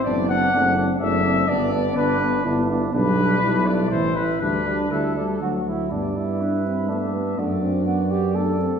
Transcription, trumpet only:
\new Staff \with { instrumentName = "Trumpet" } { \time 3/4 \key g \major \tempo 4 = 123 d''8 fis''4 r8 e''4 | d''4 b'4 r4 | b'4. d''8 c''8 b'8 | b'4 a'4 r4 |
d''4 b'4 e''4 | d''2. | }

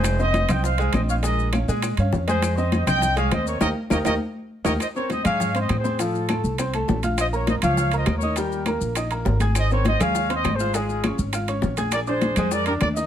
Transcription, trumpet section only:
\new Staff \with { instrumentName = "Trumpet section" } { \time 4/4 \key aes \major \tempo 4 = 202 <aes' c''>8 <c'' ees''>4 <ees'' g''>8 <c'' f''>4 <c'' ees''>8 <des'' f''>8 | <bes' ees''>4 r2 r8 <aes' c''>8~ | <aes' c''>8 <c'' ees''>4 <ees'' g''>4 <des'' f''>8 <c'' ees''>8 <bes' des''>8 | <bes' des'' ees''>8 r8 <bes' des'' ees''>8 <bes' des'' ees''>8 r4. <bes' des'' ees''>8 |
<c'' ees''>8 <bes' des''>8 <c'' ees''>8 <des'' f''>8~ \tuplet 3/2 { <des'' f''>4 <c'' ees''>8~ <c'' ees''>8 <aes' c''>4 } | <f' a'>4. r2 r8 | <c'' ees''>8 <bes' des''>8 <c'' ees''>8 <des'' f''>8~ \tuplet 3/2 { <des'' f''>4 <c'' ees''>8~ <c'' ees''>8 <bes' des''>4 } | <g' bes'>4. r2 r8 |
<c'' ees''>8 <bes' des''>8 <c'' ees''>8 <des'' f''>8~ \tuplet 3/2 { <des'' f''>4 <c'' ees''>8~ <c'' ees''>8 <aes' c''>4 } | <f' aes'>4. r2 r8 | <bes' d''>8 <aes' c''>4. <bes' d''>8 <g' bes'>8 <bes' d''>8 <bes' ees''>8 | }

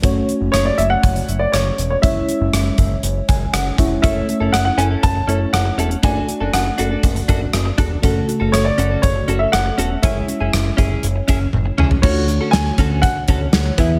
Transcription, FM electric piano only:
\new Staff \with { instrumentName = "FM electric piano" } { \time 4/4 \key d \lydian \tempo 4 = 120 << { r1 | r2 r8 gis''8 fis''8 e''8 | r1 | r1 |
r1 | r1 | d4. r2 e8 | } \\ { <a cis' fis' cis''>1 | <gis cis' e' cis''>2.~ <gis cis' e' cis''>8 <gis cis' e' cis''>8 | <a cis' e' cis''>2~ <a cis' e' cis''>8 <a cis' e' cis''>4. | <a d' fis' d''>1 |
<cis a fis' a'>1 | <gis cis' e' cis''>1 | <a d' eis' fis' cis''>2.~ <a d' eis' fis' cis''>8 <b e' gis' e''>8 | } >> }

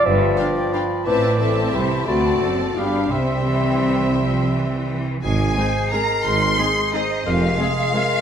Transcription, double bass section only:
\new Staff \with { instrumentName = "Double bass section" } { \clef bass \time 3/4 \key c \major \tempo 4 = 174 g,,4 r2 | a,,2 c,4 | d,4 fis,,4 g,,4 | c,2.~ |
c,2~ c,8 r8 | \key aes \major aes,,4 r2 | aes,,4 r2 | f,,4 r2 | }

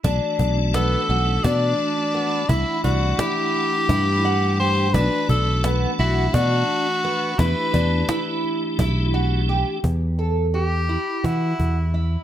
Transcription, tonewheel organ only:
\new Staff \with { instrumentName = "Tonewheel organ" } { \time 7/8 \key e \minor \tempo 4 = 86 <e a d' fis'>2.~ <e a d' fis'>8 | <e a d' fis''>2.~ <e a d' fis''>8 | <e a d' fis'>2.~ <e a d' fis'>8 | <e a d' g'>2.~ <e a d' g'>8 |
r2. r8 | }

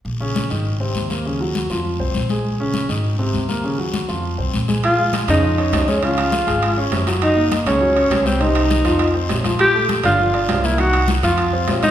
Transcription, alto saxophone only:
\new Staff \with { instrumentName = "Alto saxophone" } { \time 4/4 \key bes \minor \tempo 4 = 202 r1 | r1 | r1 | r1 |
f'4 r8 ees'2 des'8 | f'2. r4 | ees'4 r8 des'2 c'8 | ees'2. r4 |
g'4 r8 f'2 e'8 | ges'4 r8 f'2 ees'8 | }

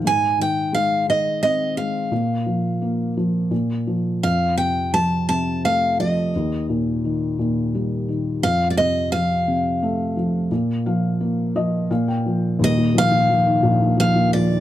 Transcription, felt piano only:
<<
  \new Staff \with { instrumentName = "Felt piano" } { \time 3/4 \key ees \major \tempo 4 = 86 r2. | r2. | r2. | r2. |
r2. | r8 f''4 ees''8 f''16 g''8. | r2. | }
  \new Staff \with { instrumentName = "Felt piano" } { \clef bass \time 3/4 \key ees \major aes,8 ees8 aes8 ees8 c'8 aes8 | bes,8 f8 bes8 f8 bes,8 f8 | f,8 c8 f8 c8 a8 f8 | ees,8 bes,8 ees8 bes,8 g8 ees8 |
f,8 c8 f8 c8 a8 f8 | bes,8 f8 bes8 f8 bes,8 f8 | <ees,, ees,>16 bes,16 f16 bes,16 f16 ees16 <bes,, bes,>16 bes,16 f16 bes,16 f16 ees16 | }
>>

